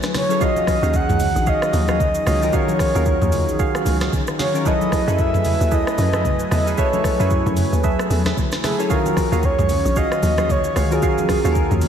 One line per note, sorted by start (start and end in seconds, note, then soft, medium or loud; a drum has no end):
0.00 0.29 F#3 loud
0.00 0.37 F#3 medium
0.00 0.37 A3 medium
0.00 0.29 C#4 medium
0.00 0.29 E4 medium
0.00 0.37 E4 medium
0.00 0.30 G#4 medium
0.00 0.30 A4 medium
0.00 0.37 B4 medium
0.00 0.43 B4 loud
0.00 0.31 C#5 loud
0.00 0.37 G#5 medium
0.00 cross-stick medium
0.00 snare medium
0.00 shaker medium
0.14 0.44 C#5 loud
0.14 cross-stick loud
0.14 snare medium
0.14 open hi-hat medium
0.14 low conga medium
0.14 shaker medium
0.29 0.38 F#3 medium
0.29 0.38 C#4 medium
0.29 0.38 E4 medium
0.29 0.39 G#4 medium
0.29 0.39 A4 medium
0.29 0.39 C#5 medium
0.29 shaker medium
0.40 0.73 D#3 medium
0.40 4.62 D#3 medium
0.40 4.62 F#3 medium
0.40 0.73 C#4 medium
0.40 4.62 C#4 medium
0.40 4.62 D#4 medium
0.40 0.73 F4 medium
0.40 0.79 F#4 loud
0.40 0.74 F#4 medium
0.40 0.79 G#4 medium
0.40 4.62 G#4 medium
0.40 0.74 G#4 medium
0.40 0.79 C#5 medium
0.40 0.97 D#5 loud
0.40 0.79 F5 loud
0.40 kick loud
0.40 shaker medium
0.56 high conga medium
0.56 shaker soft
0.67 kick loud
0.67 cross-stick medium
0.67 open hi-hat medium
0.67 high conga medium
0.67 shaker loud
0.82 1.06 D#2 loud
0.82 1.66 D#3 medium
0.82 1.67 C#4 medium
0.82 1.67 D#4 medium
0.82 0.93 F#4 medium
0.82 1.67 F#4 medium
0.82 0.94 G#4 medium
0.82 1.67 G#4 medium
0.82 0.94 C#5 medium
0.82 0.94 F5 medium
0.82 shaker medium
0.94 1.50 F#5 loud
0.94 kick loud
0.94 shaker medium
1.09 1.33 C#2 medium
1.09 mid tom loud
1.09 high conga medium
1.09 shaker medium
1.20 open hi-hat medium
1.20 low conga medium
1.20 shaker loud
1.36 1.59 A#1 medium
1.36 shaker medium
1.46 1.85 F#4 medium
1.46 1.85 G#4 medium
1.46 1.85 C#5 medium
1.46 2.27 D#5 loud
1.46 1.85 F5 loud
1.46 kick loud
1.46 shaker medium
1.62 cross-stick loud
1.62 shaker medium
1.73 2.20 D#2 loud
1.73 open hi-hat medium
1.73 high conga medium
1.73 shaker medium
1.88 2.00 F#4 medium
1.88 2.00 G#4 medium
1.88 2.00 C#5 medium
1.88 2.00 F5 medium
1.88 cross-stick loud
1.88 high conga medium
1.88 shaker medium
2.00 kick medium
2.00 low conga medium
2.00 shaker medium
2.15 shaker medium
2.26 2.50 C#2 medium
2.26 2.41 F#4 medium
2.26 2.42 G#4 medium
2.26 2.42 C#5 medium
2.26 2.56 D#5 medium
2.26 2.42 F5 medium
2.26 cross-stick loud
2.26 open hi-hat medium
2.26 low conga medium
2.26 shaker loud
2.41 2.51 D#3 medium
2.41 2.51 C#4 medium
2.41 2.51 F4 medium
2.41 2.51 F#4 medium
2.41 2.52 A#4 medium
2.41 shaker medium
2.52 2.86 D#3 medium
2.52 2.86 C#4 medium
2.52 2.86 F4 medium
2.52 2.91 F#4 loud
2.52 2.86 F#4 medium
2.52 2.91 G#4 medium
2.52 2.86 G#4 medium
2.52 2.91 C#5 medium
2.52 3.60 C#5 medium
2.52 2.91 F5 loud
2.52 kick loud
2.52 shaker medium
2.68 high conga medium
2.68 shaker soft
2.79 kick loud
2.79 cross-stick medium
2.79 open hi-hat medium
2.79 high conga medium
2.79 shaker loud
2.94 3.19 D#2 loud
2.94 3.79 D#3 medium
2.94 3.79 C#4 medium
2.94 3.79 F4 medium
2.94 3.06 F#4 medium
2.94 3.80 F#4 medium
2.94 3.06 G#4 medium
2.94 3.80 A#4 medium
2.94 3.06 C#5 medium
2.94 3.06 F5 medium
2.94 shaker medium
3.06 kick loud
3.06 shaker medium
3.22 3.50 D#2 loud
3.22 mid tom loud
3.22 high conga medium
3.22 shaker medium
3.32 open hi-hat medium
3.32 low conga medium
3.32 shaker loud
3.48 3.72 A#1 loud
3.48 shaker medium
3.59 3.97 F#4 medium
3.59 3.98 G#4 medium
3.59 3.98 C#5 medium
3.59 3.98 F5 loud
3.59 kick loud
3.59 shaker medium
3.75 cross-stick loud
3.75 shaker medium
3.85 4.10 C#2 medium
3.85 open hi-hat medium
3.85 high conga medium
3.85 shaker medium
4.00 4.12 F#4 medium
4.00 4.12 G#4 medium
4.00 4.12 C#5 medium
4.00 4.12 F5 medium
4.00 cross-stick loud
4.00 snare medium
4.00 high conga medium
4.00 shaker medium
4.13 kick loud
4.13 low conga medium
4.13 shaker medium
4.27 cross-stick medium
4.27 shaker medium
4.39 4.54 F#4 medium
4.39 4.54 G#4 medium
4.39 4.54 C#5 medium
4.39 4.69 C#5 loud
4.39 4.54 F5 medium
4.39 snare medium
4.39 open hi-hat medium
4.39 low conga medium
4.39 shaker loud
4.54 4.63 D#3 medium
4.54 4.63 C#4 medium
4.54 4.64 F4 medium
4.54 4.64 F#4 medium
4.54 4.64 A#4 medium
4.54 shaker medium
4.65 4.98 F#3 medium
4.65 8.86 F#3 medium
4.65 8.86 A3 medium
4.65 4.98 C#4 medium
4.65 8.86 E4 medium
4.65 5.04 E4 loud
4.65 4.99 E4 medium
4.65 5.04 G#4 medium
4.65 4.99 G#4 medium
4.65 5.04 A4 medium
4.65 4.99 A4 medium
4.65 8.86 B4 medium
4.65 5.04 B4 medium
4.65 4.99 B4 medium
4.65 5.22 D#5 loud
4.65 8.86 G#5 medium
4.65 kick loud
4.65 shaker medium
4.81 high conga medium
4.81 shaker soft
4.92 kick medium
4.92 cross-stick medium
4.92 open hi-hat medium
4.92 high conga medium
4.92 shaker loud
5.07 5.36 F#2 loud
5.07 5.91 F#3 medium
5.07 5.92 C#4 medium
5.07 5.92 E4 medium
5.07 5.18 G#4 medium
5.07 5.92 G#4 medium
5.07 5.18 A4 medium
5.07 5.92 A4 medium
5.07 5.18 B4 medium
5.07 5.92 B4 medium
5.07 5.18 E5 medium
5.07 shaker medium
5.19 5.75 E5 loud
5.19 kick loud
5.19 shaker medium
5.34 5.58 E2 loud
5.34 mid tom loud
5.34 high conga medium
5.34 shaker medium
5.45 open hi-hat medium
5.45 low conga medium
5.45 shaker loud
5.61 5.84 D#2 medium
5.61 shaker medium
5.71 6.10 E4 loud
5.71 6.10 G#4 medium
5.71 6.10 A4 medium
5.71 6.10 B4 medium
5.71 6.52 D#5 loud
5.71 kick loud
5.71 shaker medium
5.87 cross-stick loud
5.87 shaker medium
5.98 6.45 F#2 medium
5.98 open hi-hat medium
5.98 high conga medium
5.98 shaker medium
6.13 6.24 G#4 medium
6.13 6.24 A4 medium
6.13 6.25 B4 medium
6.13 6.25 E5 medium
6.13 cross-stick loud
6.13 high conga medium
6.13 shaker medium
6.25 kick loud
6.25 low conga medium
6.25 shaker medium
6.39 shaker medium
6.51 6.75 E2 medium
6.51 6.66 G#4 medium
6.51 6.66 A4 medium
6.51 6.66 B4 medium
6.51 6.65 D#5 loud
6.51 6.66 E5 medium
6.51 cross-stick medium
6.51 open hi-hat medium
6.51 low conga medium
6.51 shaker medium
6.66 6.75 F#3 medium
6.66 6.75 C#4 medium
6.66 6.76 E4 medium
6.66 6.76 G#4 medium
6.66 6.76 A4 medium
6.66 6.76 B4 medium
6.66 shaker medium
6.77 7.10 F#3 medium
6.77 7.10 C#4 medium
6.77 7.11 E4 medium
6.77 7.16 G#4 loud
6.77 7.11 G#4 medium
6.77 7.16 A4 medium
6.77 7.11 A4 medium
6.77 7.16 B4 medium
6.77 7.11 C#5 medium
6.77 7.81 C#5 loud
6.77 7.16 E5 loud
6.77 kick loud
6.77 shaker medium
6.93 high conga medium
6.93 shaker soft
7.04 kick medium
7.04 cross-stick medium
7.04 open hi-hat medium
7.04 high conga medium
7.04 shaker loud
7.19 7.43 F#2 loud
7.19 8.04 F#3 medium
7.19 8.04 C#4 medium
7.19 8.04 E4 medium
7.19 7.31 G#4 medium
7.19 8.04 G#4 medium
7.19 7.31 A4 medium
7.19 8.04 A4 medium
7.19 7.31 B4 medium
7.19 8.05 B4 medium
7.19 7.31 E5 medium
7.19 shaker medium
7.30 kick loud
7.30 shaker medium
7.46 7.70 F#2 medium
7.46 mid tom loud
7.46 high conga medium
7.46 shaker medium
7.57 open hi-hat medium
7.57 low conga medium
7.57 shaker loud
7.73 7.96 D#2 medium
7.73 shaker medium
7.83 8.22 G#4 loud
7.83 8.22 A4 medium
7.83 8.22 B4 medium
7.83 8.22 E5 loud
7.83 kick loud
7.83 shaker medium
7.99 cross-stick loud
7.99 shaker medium
8.10 8.34 E2 medium
8.10 open hi-hat medium
8.10 high conga medium
8.10 shaker medium
8.25 8.37 G#4 medium
8.25 8.37 A4 medium
8.25 8.37 B4 medium
8.25 8.37 E5 medium
8.25 cross-stick loud
8.25 snare medium
8.25 high conga medium
8.25 shaker medium
8.37 kick loud
8.37 low conga medium
8.37 shaker medium
8.52 cross-stick medium
8.52 snare medium
8.52 high conga medium
8.52 shaker medium
8.63 8.79 G#4 medium
8.63 8.89 G#4 medium
8.63 8.79 A4 medium
8.63 8.79 B4 medium
8.63 8.79 E5 medium
8.63 cross-stick loud
8.63 snare medium
8.63 open hi-hat medium
8.63 low conga medium
8.63 shaker medium
8.78 8.88 F#3 medium
8.78 8.88 C#4 medium
8.78 8.88 E4 medium
8.78 8.88 G#4 medium
8.78 8.88 A4 medium
8.78 8.89 C#5 medium
8.78 shaker medium
8.89 9.23 D#3 medium
8.89 11.88 D#3 medium
8.89 11.88 F#3 medium
8.89 9.23 C#4 medium
8.89 11.88 C#4 medium
8.89 9.23 F4 medium
8.89 9.28 F#4 medium
8.89 9.23 F#4 medium
8.89 9.28 G#4 medium
8.89 9.24 G#4 medium
8.89 9.46 A#4 loud
8.89 9.29 C#5 medium
8.89 11.88 F5 medium
8.89 9.29 F5 loud
8.89 kick loud
8.89 shaker medium
9.06 high conga medium
9.06 shaker soft
9.17 kick medium
9.17 cross-stick medium
9.17 open hi-hat medium
9.17 high conga medium
9.17 shaker loud
9.31 9.56 D#2 loud
9.31 10.16 D#3 medium
9.31 10.16 C#4 medium
9.31 10.16 F4 medium
9.31 9.43 F#4 medium
9.31 10.17 F#4 medium
9.31 9.43 G#4 medium
9.31 10.17 G#4 medium
9.31 9.43 C#5 medium
9.31 9.43 F5 medium
9.31 shaker medium
9.43 9.99 C#5 loud
9.43 kick loud
9.43 shaker medium
9.59 9.82 C#2 medium
9.59 mid tom loud
9.59 high conga medium
9.59 shaker medium
9.69 open hi-hat medium
9.69 low conga medium
9.69 shaker loud
9.85 10.09 A#1 loud
9.85 shaker medium
9.96 10.35 F#4 medium
9.96 10.35 G#4 medium
9.96 10.35 C#5 medium
9.96 10.24 D#5 loud
9.96 10.35 F5 loud
9.96 kick loud
9.96 shaker medium
10.12 cross-stick loud
10.12 shaker medium
10.22 10.70 D#2 medium
10.22 10.52 D#5 loud
10.22 open hi-hat medium
10.22 high conga medium
10.22 shaker medium
10.38 10.49 F#4 medium
10.38 10.49 G#4 medium
10.38 10.49 C#5 medium
10.38 10.50 F5 medium
10.38 cross-stick loud
10.38 high conga medium
10.38 shaker soft
10.49 10.94 C#5 loud
10.49 kick loud
10.49 low conga medium
10.49 shaker medium
10.64 shaker medium
10.76 11.00 C#2 medium
10.76 10.91 F#4 medium
10.76 10.91 G#4 medium
10.76 10.91 C#5 medium
10.76 10.91 F5 medium
10.76 cross-stick medium
10.76 open hi-hat medium
10.76 low conga medium
10.76 shaker medium
10.90 11.00 D#3 medium
10.90 11.00 C#4 medium
10.90 11.00 F4 medium
10.90 11.01 F#4 medium
10.90 11.88 G#4 medium
10.90 11.01 A#4 medium
10.90 shaker medium
11.02 11.35 D#3 medium
11.02 11.35 C#4 medium
11.02 11.36 F4 medium
11.02 11.41 F#4 loud
11.02 11.36 F#4 medium
11.02 11.41 G#4 medium
11.02 11.36 G#4 medium
11.02 11.41 C#5 medium
11.02 11.41 F5 loud
11.02 kick loud
11.02 shaker medium
11.18 high conga medium
11.18 shaker soft
11.29 kick loud
11.29 cross-stick medium
11.29 open hi-hat medium
11.29 high conga medium
11.29 shaker loud
11.43 11.68 D#2 loud
11.43 11.88 D#3 medium
11.43 11.88 C#4 medium
11.43 11.88 F4 medium
11.43 11.55 F#4 medium
11.43 11.88 F#4 medium
11.43 11.56 G#4 medium
11.43 11.50 A4 medium
11.43 11.56 C#5 medium
11.43 11.56 F5 medium
11.43 shaker medium
11.52 11.88 A#4 medium
11.52 kick loud
11.52 shaker medium
11.71 11.88 D#2 medium
11.71 mid tom loud
11.71 high conga medium
11.71 shaker medium
11.81 open hi-hat medium
11.81 low conga medium
11.81 shaker loud